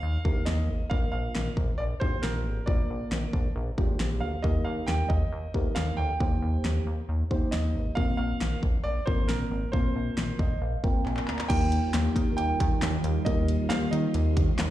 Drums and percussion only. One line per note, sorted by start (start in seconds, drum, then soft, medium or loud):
0.25 kick medium
0.47 snare loud
0.91 kick loud
1.35 snare loud
1.57 kick medium
2.01 kick loud
2.23 snare loud
2.67 kick loud
3.12 snare loud
3.33 kick medium
3.78 kick medium
4.00 snare loud
4.44 kick loud
4.88 snare loud
5.10 kick medium
5.54 kick medium
5.76 snare loud
6.20 kick loud
6.65 snare loud
7.31 kick loud
7.53 snare loud
7.97 kick loud
8.41 snare loud
8.63 kick medium
9.07 kick loud
9.29 snare loud
9.73 kick loud
10.18 snare loud
10.39 kick medium
10.84 kick medium
11.06 clap medium
11.17 clap medium
11.28 clap medium
11.39 clap medium
11.50 kick loud
11.50 closed hi-hat medium
11.50 crash medium
11.72 closed hi-hat medium
11.94 snare loud
11.94 clap medium
11.94 closed hi-hat medium
12.16 kick medium
12.16 closed hi-hat medium
12.38 closed hi-hat medium
12.60 kick loud
12.60 closed hi-hat medium
12.82 snare loud
12.82 clap loud
12.82 closed hi-hat medium
13.04 closed hi-hat medium
13.26 kick loud
13.26 closed hi-hat medium
13.48 closed hi-hat medium
13.71 snare loud
13.71 clap medium
13.71 closed hi-hat medium
13.93 closed hi-hat medium
14.14 closed hi-hat medium
14.37 kick loud
14.37 closed hi-hat medium
14.59 snare loud
14.59 clap loud
14.59 closed hi-hat medium